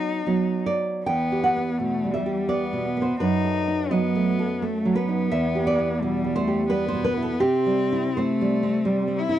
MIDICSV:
0, 0, Header, 1, 3, 480
1, 0, Start_track
1, 0, Key_signature, 1, "minor"
1, 0, Tempo, 810811
1, 623, Time_signature, 3, 2, 24, 8
1, 623, Tempo, 722022
1, 1103, Tempo, 710900
1, 3023, Tempo, 692841
1, 4943, Tempo, 771208
1, 5423, Tempo, 674157
1, 6299, End_track
2, 0, Start_track
2, 0, Title_t, "Nylon-string guitar"
2, 0, Program_c, 0, 24
2, 0, Note_on_c, 0, 54, 42
2, 0, Note_on_c, 0, 59, 42
2, 126, Note_off_c, 0, 54, 0
2, 128, Note_off_c, 0, 59, 0
2, 157, Note_on_c, 0, 54, 37
2, 160, Note_on_c, 0, 59, 43
2, 393, Note_on_c, 0, 74, 75
2, 605, Note_off_c, 0, 54, 0
2, 605, Note_off_c, 0, 59, 0
2, 614, Note_off_c, 0, 74, 0
2, 631, Note_on_c, 0, 79, 73
2, 635, Note_on_c, 0, 40, 50
2, 800, Note_on_c, 0, 67, 40
2, 858, Note_off_c, 0, 79, 0
2, 878, Note_on_c, 0, 78, 67
2, 963, Note_on_c, 0, 59, 39
2, 1048, Note_off_c, 0, 67, 0
2, 1118, Note_on_c, 0, 47, 31
2, 1209, Note_off_c, 0, 59, 0
2, 1282, Note_on_c, 0, 55, 38
2, 1331, Note_off_c, 0, 78, 0
2, 1348, Note_on_c, 0, 76, 65
2, 1367, Note_off_c, 0, 47, 0
2, 1430, Note_on_c, 0, 67, 39
2, 1528, Note_off_c, 0, 55, 0
2, 1575, Note_off_c, 0, 76, 0
2, 1584, Note_on_c, 0, 74, 64
2, 1594, Note_on_c, 0, 55, 39
2, 1682, Note_off_c, 0, 67, 0
2, 1748, Note_on_c, 0, 47, 39
2, 1847, Note_off_c, 0, 55, 0
2, 1909, Note_on_c, 0, 59, 41
2, 1932, Note_off_c, 0, 74, 0
2, 1943, Note_on_c, 0, 72, 52
2, 2005, Note_off_c, 0, 47, 0
2, 2046, Note_off_c, 0, 40, 0
2, 2066, Note_off_c, 0, 72, 0
2, 2066, Note_on_c, 0, 71, 64
2, 2069, Note_off_c, 0, 59, 0
2, 2071, Note_on_c, 0, 42, 52
2, 2234, Note_on_c, 0, 69, 39
2, 2390, Note_on_c, 0, 63, 40
2, 2487, Note_off_c, 0, 69, 0
2, 2529, Note_off_c, 0, 71, 0
2, 2545, Note_on_c, 0, 75, 59
2, 2554, Note_on_c, 0, 54, 38
2, 2646, Note_off_c, 0, 63, 0
2, 2709, Note_on_c, 0, 57, 44
2, 2806, Note_off_c, 0, 54, 0
2, 2869, Note_on_c, 0, 69, 43
2, 2961, Note_off_c, 0, 57, 0
2, 3003, Note_off_c, 0, 75, 0
2, 3026, Note_on_c, 0, 57, 43
2, 3121, Note_off_c, 0, 69, 0
2, 3186, Note_on_c, 0, 54, 40
2, 3256, Note_on_c, 0, 71, 74
2, 3282, Note_off_c, 0, 57, 0
2, 3346, Note_on_c, 0, 63, 44
2, 3443, Note_off_c, 0, 54, 0
2, 3481, Note_off_c, 0, 42, 0
2, 3492, Note_off_c, 0, 71, 0
2, 3506, Note_on_c, 0, 76, 80
2, 3507, Note_off_c, 0, 63, 0
2, 3512, Note_on_c, 0, 40, 57
2, 3670, Note_on_c, 0, 67, 42
2, 3737, Note_off_c, 0, 76, 0
2, 3750, Note_on_c, 0, 74, 82
2, 3831, Note_on_c, 0, 64, 46
2, 3923, Note_off_c, 0, 67, 0
2, 3998, Note_on_c, 0, 47, 42
2, 4083, Note_off_c, 0, 64, 0
2, 4149, Note_on_c, 0, 55, 44
2, 4205, Note_off_c, 0, 74, 0
2, 4227, Note_on_c, 0, 72, 81
2, 4245, Note_off_c, 0, 47, 0
2, 4310, Note_on_c, 0, 67, 42
2, 4400, Note_off_c, 0, 55, 0
2, 4453, Note_off_c, 0, 72, 0
2, 4463, Note_on_c, 0, 71, 78
2, 4466, Note_on_c, 0, 55, 48
2, 4560, Note_off_c, 0, 67, 0
2, 4581, Note_off_c, 0, 71, 0
2, 4593, Note_on_c, 0, 72, 75
2, 4630, Note_on_c, 0, 47, 47
2, 4701, Note_off_c, 0, 72, 0
2, 4704, Note_on_c, 0, 71, 82
2, 4718, Note_off_c, 0, 55, 0
2, 4789, Note_off_c, 0, 71, 0
2, 4791, Note_on_c, 0, 64, 47
2, 4828, Note_on_c, 0, 69, 66
2, 4883, Note_off_c, 0, 47, 0
2, 4919, Note_off_c, 0, 40, 0
2, 4947, Note_off_c, 0, 69, 0
2, 4949, Note_off_c, 0, 64, 0
2, 4951, Note_on_c, 0, 67, 80
2, 4959, Note_on_c, 0, 48, 58
2, 5113, Note_on_c, 0, 55, 46
2, 5276, Note_on_c, 0, 64, 48
2, 5368, Note_off_c, 0, 55, 0
2, 5408, Note_off_c, 0, 67, 0
2, 5428, Note_on_c, 0, 72, 67
2, 5435, Note_on_c, 0, 60, 43
2, 5535, Note_off_c, 0, 64, 0
2, 5603, Note_on_c, 0, 55, 48
2, 5697, Note_off_c, 0, 60, 0
2, 5758, Note_on_c, 0, 60, 48
2, 5852, Note_off_c, 0, 55, 0
2, 5893, Note_off_c, 0, 72, 0
2, 5914, Note_on_c, 0, 55, 49
2, 6005, Note_off_c, 0, 60, 0
2, 6074, Note_on_c, 0, 60, 41
2, 6163, Note_off_c, 0, 55, 0
2, 6230, Note_on_c, 0, 64, 50
2, 6299, Note_off_c, 0, 48, 0
2, 6299, Note_off_c, 0, 60, 0
2, 6299, Note_off_c, 0, 64, 0
2, 6299, End_track
3, 0, Start_track
3, 0, Title_t, "Cello"
3, 0, Program_c, 1, 42
3, 0, Note_on_c, 1, 63, 64
3, 391, Note_off_c, 1, 63, 0
3, 625, Note_on_c, 1, 59, 51
3, 1107, Note_on_c, 1, 57, 52
3, 1117, Note_off_c, 1, 59, 0
3, 1341, Note_on_c, 1, 55, 47
3, 1351, Note_off_c, 1, 57, 0
3, 1585, Note_on_c, 1, 59, 55
3, 1595, Note_off_c, 1, 55, 0
3, 2069, Note_off_c, 1, 59, 0
3, 2071, Note_on_c, 1, 63, 62
3, 2545, Note_on_c, 1, 59, 59
3, 2555, Note_off_c, 1, 63, 0
3, 3019, Note_on_c, 1, 57, 52
3, 3029, Note_off_c, 1, 59, 0
3, 3258, Note_on_c, 1, 59, 57
3, 3268, Note_off_c, 1, 57, 0
3, 3986, Note_on_c, 1, 55, 57
3, 3996, Note_off_c, 1, 59, 0
3, 4226, Note_on_c, 1, 57, 53
3, 4236, Note_off_c, 1, 55, 0
3, 4462, Note_off_c, 1, 57, 0
3, 4465, Note_on_c, 1, 59, 63
3, 4951, Note_on_c, 1, 60, 68
3, 4961, Note_off_c, 1, 59, 0
3, 5431, Note_on_c, 1, 57, 68
3, 5441, Note_off_c, 1, 60, 0
3, 5920, Note_on_c, 1, 55, 55
3, 5930, Note_off_c, 1, 57, 0
3, 6158, Note_on_c, 1, 64, 64
3, 6168, Note_off_c, 1, 55, 0
3, 6299, Note_off_c, 1, 64, 0
3, 6299, End_track
0, 0, End_of_file